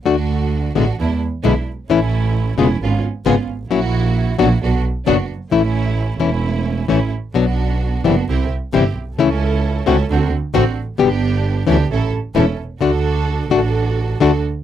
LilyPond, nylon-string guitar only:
\new Staff \with { instrumentName = "Nylon-string guitar" } { \time 4/4 \key d \major \tempo 4 = 132 <d a d' fis'>8 r4 <b, d gis b e'>8 r4 <b, d gis b e'>8 r8 | <e a cis' e'>8 r4 <cis gis b f' gis'>8 r4 <cis gis b eis' gis'>8 r8 | <fis ais cis' e'>8 r4 <b, fis b d' fis'>8 r4 <b, fis b d' fis'>8 r8 | <e a cis' e'>8 r4 <e a cis' e'>8 r4 <e a cis' e'>8 r8 |
<b, fis b d' fis'>8 r4 <c e g c' e'>8 r4 <c e g c' e'>8 r8 | <cis e a cis' e'>8 r4 <d a c' fis'>8 r4 <d a c' fis'>8 r8 | <b, d g b g'>8 r4 <e a cis' e'>8 r4 <e a cis' e'>8 r8 | <d a d' fis'>8 r4 <d a d' fis'>8 r4 <d a d' fis'>8 r8 | }